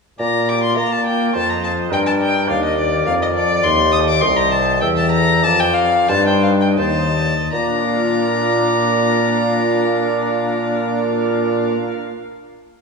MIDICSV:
0, 0, Header, 1, 5, 480
1, 0, Start_track
1, 0, Key_signature, -2, "major"
1, 0, Tempo, 577478
1, 155, Time_signature, 3, 2, 24, 8
1, 3514, Tempo, 621762
1, 4954, Tempo, 689655
1, 5434, Tempo, 743494
1, 9328, End_track
2, 0, Start_track
2, 0, Title_t, "Violin"
2, 0, Program_c, 0, 40
2, 162, Note_on_c, 0, 82, 87
2, 409, Note_on_c, 0, 86, 86
2, 421, Note_off_c, 0, 82, 0
2, 519, Note_off_c, 0, 86, 0
2, 524, Note_on_c, 0, 84, 80
2, 639, Note_off_c, 0, 84, 0
2, 643, Note_on_c, 0, 82, 72
2, 765, Note_on_c, 0, 81, 78
2, 777, Note_off_c, 0, 82, 0
2, 881, Note_off_c, 0, 81, 0
2, 886, Note_on_c, 0, 79, 76
2, 1115, Note_off_c, 0, 79, 0
2, 1127, Note_on_c, 0, 81, 93
2, 1244, Note_on_c, 0, 82, 77
2, 1256, Note_off_c, 0, 81, 0
2, 1353, Note_off_c, 0, 82, 0
2, 1358, Note_on_c, 0, 81, 84
2, 1425, Note_off_c, 0, 81, 0
2, 1603, Note_on_c, 0, 79, 92
2, 1648, Note_off_c, 0, 79, 0
2, 1715, Note_on_c, 0, 81, 79
2, 1761, Note_off_c, 0, 81, 0
2, 1845, Note_on_c, 0, 79, 88
2, 2070, Note_off_c, 0, 79, 0
2, 2074, Note_on_c, 0, 77, 81
2, 2186, Note_off_c, 0, 77, 0
2, 2199, Note_on_c, 0, 75, 80
2, 2308, Note_off_c, 0, 75, 0
2, 2315, Note_on_c, 0, 74, 75
2, 2541, Note_off_c, 0, 74, 0
2, 2546, Note_on_c, 0, 77, 108
2, 2593, Note_off_c, 0, 77, 0
2, 2679, Note_on_c, 0, 75, 61
2, 2724, Note_off_c, 0, 75, 0
2, 2779, Note_on_c, 0, 74, 93
2, 3024, Note_on_c, 0, 84, 105
2, 3037, Note_off_c, 0, 74, 0
2, 3257, Note_off_c, 0, 84, 0
2, 3262, Note_on_c, 0, 87, 108
2, 3313, Note_off_c, 0, 87, 0
2, 3395, Note_on_c, 0, 86, 100
2, 3499, Note_on_c, 0, 84, 94
2, 3512, Note_off_c, 0, 86, 0
2, 3621, Note_on_c, 0, 82, 90
2, 3633, Note_off_c, 0, 84, 0
2, 3733, Note_on_c, 0, 81, 86
2, 3745, Note_off_c, 0, 82, 0
2, 3960, Note_off_c, 0, 81, 0
2, 3964, Note_on_c, 0, 79, 100
2, 4014, Note_off_c, 0, 79, 0
2, 4089, Note_on_c, 0, 81, 88
2, 4193, Note_off_c, 0, 81, 0
2, 4198, Note_on_c, 0, 82, 108
2, 4448, Note_on_c, 0, 81, 114
2, 4460, Note_off_c, 0, 82, 0
2, 4573, Note_on_c, 0, 79, 100
2, 4585, Note_off_c, 0, 81, 0
2, 4680, Note_on_c, 0, 77, 98
2, 4691, Note_off_c, 0, 79, 0
2, 4948, Note_on_c, 0, 81, 102
2, 4959, Note_off_c, 0, 77, 0
2, 5069, Note_off_c, 0, 81, 0
2, 5078, Note_on_c, 0, 79, 85
2, 5184, Note_off_c, 0, 79, 0
2, 5188, Note_on_c, 0, 77, 82
2, 5237, Note_off_c, 0, 77, 0
2, 5312, Note_on_c, 0, 79, 85
2, 5361, Note_off_c, 0, 79, 0
2, 5434, Note_on_c, 0, 81, 95
2, 5904, Note_off_c, 0, 81, 0
2, 5916, Note_on_c, 0, 82, 91
2, 8612, Note_off_c, 0, 82, 0
2, 9328, End_track
3, 0, Start_track
3, 0, Title_t, "Oboe"
3, 0, Program_c, 1, 68
3, 159, Note_on_c, 1, 74, 56
3, 607, Note_off_c, 1, 74, 0
3, 640, Note_on_c, 1, 74, 61
3, 1113, Note_on_c, 1, 72, 62
3, 1126, Note_off_c, 1, 74, 0
3, 1585, Note_on_c, 1, 70, 60
3, 1597, Note_off_c, 1, 72, 0
3, 2061, Note_on_c, 1, 74, 75
3, 2074, Note_off_c, 1, 70, 0
3, 3509, Note_on_c, 1, 75, 75
3, 3521, Note_off_c, 1, 74, 0
3, 3965, Note_off_c, 1, 75, 0
3, 3970, Note_on_c, 1, 76, 67
3, 4446, Note_on_c, 1, 74, 70
3, 4457, Note_off_c, 1, 76, 0
3, 4948, Note_off_c, 1, 74, 0
3, 4952, Note_on_c, 1, 72, 68
3, 5314, Note_off_c, 1, 72, 0
3, 5433, Note_on_c, 1, 72, 65
3, 5665, Note_off_c, 1, 72, 0
3, 5912, Note_on_c, 1, 74, 65
3, 8608, Note_off_c, 1, 74, 0
3, 9328, End_track
4, 0, Start_track
4, 0, Title_t, "Pipe organ"
4, 0, Program_c, 2, 19
4, 152, Note_on_c, 2, 46, 52
4, 277, Note_on_c, 2, 65, 47
4, 402, Note_on_c, 2, 67, 34
4, 470, Note_off_c, 2, 65, 0
4, 519, Note_on_c, 2, 65, 37
4, 520, Note_off_c, 2, 67, 0
4, 603, Note_off_c, 2, 46, 0
4, 633, Note_on_c, 2, 58, 52
4, 711, Note_off_c, 2, 65, 0
4, 752, Note_on_c, 2, 74, 46
4, 874, Note_on_c, 2, 65, 44
4, 946, Note_off_c, 2, 74, 0
4, 995, Note_on_c, 2, 70, 47
4, 1066, Note_off_c, 2, 65, 0
4, 1081, Note_off_c, 2, 58, 0
4, 1115, Note_off_c, 2, 70, 0
4, 1116, Note_on_c, 2, 41, 46
4, 1234, Note_on_c, 2, 75, 46
4, 1359, Note_on_c, 2, 77, 40
4, 1424, Note_off_c, 2, 75, 0
4, 1475, Note_off_c, 2, 77, 0
4, 1479, Note_on_c, 2, 75, 47
4, 1557, Note_off_c, 2, 41, 0
4, 1594, Note_off_c, 2, 75, 0
4, 1602, Note_on_c, 2, 43, 51
4, 1709, Note_on_c, 2, 74, 46
4, 1832, Note_on_c, 2, 75, 37
4, 1899, Note_off_c, 2, 74, 0
4, 1949, Note_off_c, 2, 75, 0
4, 1951, Note_on_c, 2, 74, 45
4, 2038, Note_off_c, 2, 43, 0
4, 2066, Note_on_c, 2, 39, 53
4, 2067, Note_on_c, 2, 62, 48
4, 2139, Note_off_c, 2, 74, 0
4, 2189, Note_on_c, 2, 70, 47
4, 2256, Note_off_c, 2, 62, 0
4, 2311, Note_on_c, 2, 74, 50
4, 2377, Note_off_c, 2, 70, 0
4, 2429, Note_on_c, 2, 70, 50
4, 2498, Note_off_c, 2, 74, 0
4, 2508, Note_off_c, 2, 39, 0
4, 2543, Note_on_c, 2, 41, 58
4, 2547, Note_on_c, 2, 74, 50
4, 2617, Note_off_c, 2, 70, 0
4, 2663, Note_on_c, 2, 70, 52
4, 2736, Note_off_c, 2, 74, 0
4, 2781, Note_on_c, 2, 69, 46
4, 2855, Note_off_c, 2, 70, 0
4, 2894, Note_on_c, 2, 74, 55
4, 2902, Note_off_c, 2, 69, 0
4, 2991, Note_off_c, 2, 41, 0
4, 3020, Note_off_c, 2, 74, 0
4, 3023, Note_on_c, 2, 39, 60
4, 3136, Note_on_c, 2, 67, 50
4, 3271, Note_on_c, 2, 69, 41
4, 3337, Note_off_c, 2, 67, 0
4, 3392, Note_off_c, 2, 69, 0
4, 3396, Note_on_c, 2, 67, 46
4, 3481, Note_off_c, 2, 39, 0
4, 3507, Note_on_c, 2, 36, 61
4, 3507, Note_on_c, 2, 60, 59
4, 3585, Note_off_c, 2, 67, 0
4, 3628, Note_on_c, 2, 72, 50
4, 3694, Note_off_c, 2, 60, 0
4, 3747, Note_on_c, 2, 67, 53
4, 3813, Note_off_c, 2, 72, 0
4, 3861, Note_on_c, 2, 72, 58
4, 3931, Note_off_c, 2, 67, 0
4, 3942, Note_off_c, 2, 36, 0
4, 3969, Note_on_c, 2, 40, 60
4, 3977, Note_off_c, 2, 72, 0
4, 4090, Note_on_c, 2, 67, 50
4, 4216, Note_on_c, 2, 69, 48
4, 4284, Note_off_c, 2, 67, 0
4, 4336, Note_off_c, 2, 69, 0
4, 4342, Note_on_c, 2, 67, 51
4, 4422, Note_off_c, 2, 40, 0
4, 4451, Note_on_c, 2, 41, 56
4, 4460, Note_off_c, 2, 67, 0
4, 4572, Note_on_c, 2, 72, 50
4, 4707, Note_on_c, 2, 74, 41
4, 4774, Note_off_c, 2, 72, 0
4, 4830, Note_off_c, 2, 74, 0
4, 4833, Note_on_c, 2, 72, 47
4, 4921, Note_off_c, 2, 41, 0
4, 4955, Note_on_c, 2, 43, 58
4, 4958, Note_on_c, 2, 63, 49
4, 5027, Note_off_c, 2, 72, 0
4, 5069, Note_on_c, 2, 72, 52
4, 5145, Note_off_c, 2, 63, 0
4, 5193, Note_on_c, 2, 63, 50
4, 5262, Note_off_c, 2, 72, 0
4, 5309, Note_on_c, 2, 75, 51
4, 5386, Note_off_c, 2, 63, 0
4, 5407, Note_off_c, 2, 43, 0
4, 5432, Note_on_c, 2, 72, 53
4, 5433, Note_on_c, 2, 39, 53
4, 5503, Note_off_c, 2, 75, 0
4, 5549, Note_on_c, 2, 75, 47
4, 5621, Note_off_c, 2, 72, 0
4, 5673, Note_on_c, 2, 74, 46
4, 5743, Note_off_c, 2, 75, 0
4, 5793, Note_off_c, 2, 74, 0
4, 5797, Note_on_c, 2, 75, 45
4, 5887, Note_off_c, 2, 39, 0
4, 5909, Note_on_c, 2, 46, 57
4, 5916, Note_off_c, 2, 75, 0
4, 5958, Note_on_c, 2, 58, 53
4, 6001, Note_on_c, 2, 62, 58
4, 6046, Note_on_c, 2, 65, 59
4, 6090, Note_on_c, 2, 70, 58
4, 6137, Note_on_c, 2, 77, 54
4, 8605, Note_off_c, 2, 46, 0
4, 8654, Note_off_c, 2, 58, 0
4, 8697, Note_off_c, 2, 62, 0
4, 8742, Note_off_c, 2, 65, 0
4, 8786, Note_off_c, 2, 70, 0
4, 8833, Note_off_c, 2, 77, 0
4, 9328, End_track
5, 0, Start_track
5, 0, Title_t, "Bassoon"
5, 0, Program_c, 3, 70
5, 161, Note_on_c, 3, 46, 66
5, 640, Note_on_c, 3, 58, 64
5, 652, Note_off_c, 3, 46, 0
5, 1116, Note_off_c, 3, 58, 0
5, 1120, Note_on_c, 3, 41, 54
5, 1583, Note_off_c, 3, 41, 0
5, 1590, Note_on_c, 3, 43, 70
5, 2056, Note_off_c, 3, 43, 0
5, 2069, Note_on_c, 3, 39, 69
5, 2534, Note_off_c, 3, 39, 0
5, 2543, Note_on_c, 3, 41, 61
5, 3015, Note_off_c, 3, 41, 0
5, 3026, Note_on_c, 3, 39, 89
5, 3512, Note_on_c, 3, 36, 78
5, 3524, Note_off_c, 3, 39, 0
5, 3971, Note_on_c, 3, 40, 76
5, 3983, Note_off_c, 3, 36, 0
5, 4453, Note_on_c, 3, 41, 81
5, 4464, Note_off_c, 3, 40, 0
5, 4947, Note_off_c, 3, 41, 0
5, 4952, Note_on_c, 3, 43, 82
5, 5424, Note_off_c, 3, 43, 0
5, 5433, Note_on_c, 3, 39, 59
5, 5807, Note_off_c, 3, 39, 0
5, 5917, Note_on_c, 3, 46, 69
5, 8613, Note_off_c, 3, 46, 0
5, 9328, End_track
0, 0, End_of_file